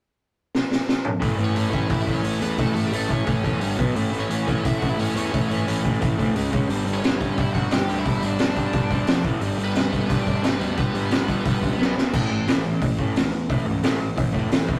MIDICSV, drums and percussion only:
0, 0, Header, 1, 2, 480
1, 0, Start_track
1, 0, Tempo, 343053
1, 1699, Time_signature, 4, 2, 24, 8
1, 8893, Tempo, 339943
1, 20806, End_track
2, 0, Start_track
2, 0, Title_t, "Drums"
2, 764, Note_on_c, 9, 38, 69
2, 904, Note_off_c, 9, 38, 0
2, 999, Note_on_c, 9, 38, 67
2, 1139, Note_off_c, 9, 38, 0
2, 1242, Note_on_c, 9, 38, 82
2, 1382, Note_off_c, 9, 38, 0
2, 1464, Note_on_c, 9, 45, 90
2, 1604, Note_off_c, 9, 45, 0
2, 1706, Note_on_c, 9, 46, 71
2, 1707, Note_on_c, 9, 36, 103
2, 1846, Note_off_c, 9, 46, 0
2, 1847, Note_off_c, 9, 36, 0
2, 1937, Note_on_c, 9, 46, 51
2, 2077, Note_off_c, 9, 46, 0
2, 2180, Note_on_c, 9, 46, 71
2, 2320, Note_off_c, 9, 46, 0
2, 2420, Note_on_c, 9, 46, 48
2, 2424, Note_on_c, 9, 36, 81
2, 2560, Note_off_c, 9, 46, 0
2, 2564, Note_off_c, 9, 36, 0
2, 2652, Note_on_c, 9, 46, 71
2, 2661, Note_on_c, 9, 36, 104
2, 2792, Note_off_c, 9, 46, 0
2, 2801, Note_off_c, 9, 36, 0
2, 2895, Note_on_c, 9, 46, 46
2, 2901, Note_on_c, 9, 36, 70
2, 3035, Note_off_c, 9, 46, 0
2, 3040, Note_off_c, 9, 36, 0
2, 3137, Note_on_c, 9, 46, 68
2, 3277, Note_off_c, 9, 46, 0
2, 3375, Note_on_c, 9, 46, 53
2, 3515, Note_off_c, 9, 46, 0
2, 3612, Note_on_c, 9, 46, 70
2, 3619, Note_on_c, 9, 36, 108
2, 3752, Note_off_c, 9, 46, 0
2, 3759, Note_off_c, 9, 36, 0
2, 3861, Note_on_c, 9, 46, 52
2, 4001, Note_off_c, 9, 46, 0
2, 4100, Note_on_c, 9, 46, 68
2, 4240, Note_off_c, 9, 46, 0
2, 4341, Note_on_c, 9, 36, 86
2, 4343, Note_on_c, 9, 46, 48
2, 4481, Note_off_c, 9, 36, 0
2, 4483, Note_off_c, 9, 46, 0
2, 4569, Note_on_c, 9, 46, 70
2, 4578, Note_on_c, 9, 36, 101
2, 4709, Note_off_c, 9, 46, 0
2, 4718, Note_off_c, 9, 36, 0
2, 4820, Note_on_c, 9, 36, 73
2, 4820, Note_on_c, 9, 46, 45
2, 4960, Note_off_c, 9, 36, 0
2, 4960, Note_off_c, 9, 46, 0
2, 5050, Note_on_c, 9, 46, 70
2, 5190, Note_off_c, 9, 46, 0
2, 5303, Note_on_c, 9, 36, 100
2, 5307, Note_on_c, 9, 46, 55
2, 5443, Note_off_c, 9, 36, 0
2, 5447, Note_off_c, 9, 46, 0
2, 5541, Note_on_c, 9, 46, 62
2, 5681, Note_off_c, 9, 46, 0
2, 5783, Note_on_c, 9, 46, 43
2, 5923, Note_off_c, 9, 46, 0
2, 6022, Note_on_c, 9, 46, 63
2, 6162, Note_off_c, 9, 46, 0
2, 6264, Note_on_c, 9, 46, 54
2, 6267, Note_on_c, 9, 36, 81
2, 6404, Note_off_c, 9, 46, 0
2, 6407, Note_off_c, 9, 36, 0
2, 6503, Note_on_c, 9, 46, 70
2, 6509, Note_on_c, 9, 36, 100
2, 6643, Note_off_c, 9, 46, 0
2, 6648, Note_off_c, 9, 36, 0
2, 6742, Note_on_c, 9, 46, 52
2, 6750, Note_on_c, 9, 36, 78
2, 6882, Note_off_c, 9, 46, 0
2, 6890, Note_off_c, 9, 36, 0
2, 6985, Note_on_c, 9, 46, 71
2, 7124, Note_off_c, 9, 46, 0
2, 7229, Note_on_c, 9, 46, 54
2, 7369, Note_off_c, 9, 46, 0
2, 7470, Note_on_c, 9, 46, 79
2, 7472, Note_on_c, 9, 36, 96
2, 7610, Note_off_c, 9, 46, 0
2, 7612, Note_off_c, 9, 36, 0
2, 7708, Note_on_c, 9, 46, 52
2, 7848, Note_off_c, 9, 46, 0
2, 7944, Note_on_c, 9, 46, 71
2, 8084, Note_off_c, 9, 46, 0
2, 8185, Note_on_c, 9, 46, 50
2, 8188, Note_on_c, 9, 36, 82
2, 8325, Note_off_c, 9, 46, 0
2, 8328, Note_off_c, 9, 36, 0
2, 8417, Note_on_c, 9, 46, 67
2, 8425, Note_on_c, 9, 36, 111
2, 8557, Note_off_c, 9, 46, 0
2, 8565, Note_off_c, 9, 36, 0
2, 8665, Note_on_c, 9, 36, 72
2, 8665, Note_on_c, 9, 46, 46
2, 8805, Note_off_c, 9, 36, 0
2, 8805, Note_off_c, 9, 46, 0
2, 8893, Note_on_c, 9, 46, 63
2, 9034, Note_off_c, 9, 46, 0
2, 9134, Note_on_c, 9, 46, 50
2, 9140, Note_on_c, 9, 36, 101
2, 9275, Note_off_c, 9, 46, 0
2, 9281, Note_off_c, 9, 36, 0
2, 9377, Note_on_c, 9, 46, 66
2, 9518, Note_off_c, 9, 46, 0
2, 9621, Note_on_c, 9, 46, 46
2, 9762, Note_off_c, 9, 46, 0
2, 9856, Note_on_c, 9, 46, 60
2, 9871, Note_on_c, 9, 38, 111
2, 9997, Note_off_c, 9, 46, 0
2, 10013, Note_off_c, 9, 38, 0
2, 10091, Note_on_c, 9, 46, 53
2, 10097, Note_on_c, 9, 36, 81
2, 10232, Note_off_c, 9, 46, 0
2, 10239, Note_off_c, 9, 36, 0
2, 10334, Note_on_c, 9, 46, 72
2, 10337, Note_on_c, 9, 36, 104
2, 10475, Note_off_c, 9, 46, 0
2, 10479, Note_off_c, 9, 36, 0
2, 10572, Note_on_c, 9, 46, 48
2, 10578, Note_on_c, 9, 36, 76
2, 10714, Note_off_c, 9, 46, 0
2, 10719, Note_off_c, 9, 36, 0
2, 10804, Note_on_c, 9, 46, 72
2, 10819, Note_on_c, 9, 38, 109
2, 10945, Note_off_c, 9, 46, 0
2, 10961, Note_off_c, 9, 38, 0
2, 11061, Note_on_c, 9, 46, 56
2, 11202, Note_off_c, 9, 46, 0
2, 11293, Note_on_c, 9, 46, 71
2, 11295, Note_on_c, 9, 36, 102
2, 11435, Note_off_c, 9, 46, 0
2, 11436, Note_off_c, 9, 36, 0
2, 11534, Note_on_c, 9, 46, 54
2, 11675, Note_off_c, 9, 46, 0
2, 11762, Note_on_c, 9, 46, 71
2, 11777, Note_on_c, 9, 38, 103
2, 11903, Note_off_c, 9, 46, 0
2, 11919, Note_off_c, 9, 38, 0
2, 12007, Note_on_c, 9, 46, 55
2, 12014, Note_on_c, 9, 36, 77
2, 12148, Note_off_c, 9, 46, 0
2, 12155, Note_off_c, 9, 36, 0
2, 12242, Note_on_c, 9, 46, 68
2, 12253, Note_on_c, 9, 36, 108
2, 12383, Note_off_c, 9, 46, 0
2, 12395, Note_off_c, 9, 36, 0
2, 12487, Note_on_c, 9, 46, 51
2, 12494, Note_on_c, 9, 36, 75
2, 12628, Note_off_c, 9, 46, 0
2, 12635, Note_off_c, 9, 36, 0
2, 12726, Note_on_c, 9, 46, 75
2, 12741, Note_on_c, 9, 38, 108
2, 12867, Note_off_c, 9, 46, 0
2, 12882, Note_off_c, 9, 38, 0
2, 12968, Note_on_c, 9, 46, 52
2, 12974, Note_on_c, 9, 36, 97
2, 13109, Note_off_c, 9, 46, 0
2, 13116, Note_off_c, 9, 36, 0
2, 13207, Note_on_c, 9, 46, 69
2, 13349, Note_off_c, 9, 46, 0
2, 13451, Note_on_c, 9, 46, 46
2, 13592, Note_off_c, 9, 46, 0
2, 13690, Note_on_c, 9, 46, 64
2, 13706, Note_on_c, 9, 38, 109
2, 13831, Note_off_c, 9, 46, 0
2, 13847, Note_off_c, 9, 38, 0
2, 13938, Note_on_c, 9, 36, 85
2, 13939, Note_on_c, 9, 46, 52
2, 14079, Note_off_c, 9, 36, 0
2, 14080, Note_off_c, 9, 46, 0
2, 14175, Note_on_c, 9, 46, 69
2, 14179, Note_on_c, 9, 36, 102
2, 14317, Note_off_c, 9, 46, 0
2, 14321, Note_off_c, 9, 36, 0
2, 14413, Note_on_c, 9, 46, 45
2, 14418, Note_on_c, 9, 36, 78
2, 14554, Note_off_c, 9, 46, 0
2, 14560, Note_off_c, 9, 36, 0
2, 14655, Note_on_c, 9, 46, 68
2, 14671, Note_on_c, 9, 38, 115
2, 14796, Note_off_c, 9, 46, 0
2, 14812, Note_off_c, 9, 38, 0
2, 14895, Note_on_c, 9, 46, 54
2, 15037, Note_off_c, 9, 46, 0
2, 15131, Note_on_c, 9, 46, 72
2, 15137, Note_on_c, 9, 36, 111
2, 15272, Note_off_c, 9, 46, 0
2, 15278, Note_off_c, 9, 36, 0
2, 15373, Note_on_c, 9, 46, 52
2, 15514, Note_off_c, 9, 46, 0
2, 15604, Note_on_c, 9, 46, 79
2, 15620, Note_on_c, 9, 38, 108
2, 15745, Note_off_c, 9, 46, 0
2, 15761, Note_off_c, 9, 38, 0
2, 15847, Note_on_c, 9, 46, 52
2, 15853, Note_on_c, 9, 36, 82
2, 15988, Note_off_c, 9, 46, 0
2, 15994, Note_off_c, 9, 36, 0
2, 16089, Note_on_c, 9, 46, 76
2, 16094, Note_on_c, 9, 36, 103
2, 16230, Note_off_c, 9, 46, 0
2, 16235, Note_off_c, 9, 36, 0
2, 16330, Note_on_c, 9, 46, 45
2, 16335, Note_on_c, 9, 36, 77
2, 16471, Note_off_c, 9, 46, 0
2, 16476, Note_off_c, 9, 36, 0
2, 16599, Note_on_c, 9, 38, 62
2, 16741, Note_off_c, 9, 38, 0
2, 16832, Note_on_c, 9, 38, 81
2, 16973, Note_off_c, 9, 38, 0
2, 17052, Note_on_c, 9, 49, 108
2, 17055, Note_on_c, 9, 36, 105
2, 17193, Note_off_c, 9, 49, 0
2, 17196, Note_off_c, 9, 36, 0
2, 17532, Note_on_c, 9, 46, 53
2, 17547, Note_on_c, 9, 38, 101
2, 17673, Note_off_c, 9, 46, 0
2, 17689, Note_off_c, 9, 38, 0
2, 18015, Note_on_c, 9, 46, 56
2, 18017, Note_on_c, 9, 36, 101
2, 18156, Note_off_c, 9, 46, 0
2, 18158, Note_off_c, 9, 36, 0
2, 18255, Note_on_c, 9, 36, 75
2, 18396, Note_off_c, 9, 36, 0
2, 18500, Note_on_c, 9, 46, 55
2, 18516, Note_on_c, 9, 38, 110
2, 18641, Note_off_c, 9, 46, 0
2, 18657, Note_off_c, 9, 38, 0
2, 18974, Note_on_c, 9, 46, 53
2, 18977, Note_on_c, 9, 36, 110
2, 19116, Note_off_c, 9, 46, 0
2, 19118, Note_off_c, 9, 36, 0
2, 19450, Note_on_c, 9, 46, 54
2, 19465, Note_on_c, 9, 38, 100
2, 19591, Note_off_c, 9, 46, 0
2, 19607, Note_off_c, 9, 38, 0
2, 19932, Note_on_c, 9, 46, 58
2, 19935, Note_on_c, 9, 36, 107
2, 20073, Note_off_c, 9, 46, 0
2, 20076, Note_off_c, 9, 36, 0
2, 20174, Note_on_c, 9, 36, 74
2, 20315, Note_off_c, 9, 36, 0
2, 20412, Note_on_c, 9, 46, 60
2, 20428, Note_on_c, 9, 38, 102
2, 20554, Note_off_c, 9, 46, 0
2, 20569, Note_off_c, 9, 38, 0
2, 20656, Note_on_c, 9, 36, 96
2, 20797, Note_off_c, 9, 36, 0
2, 20806, End_track
0, 0, End_of_file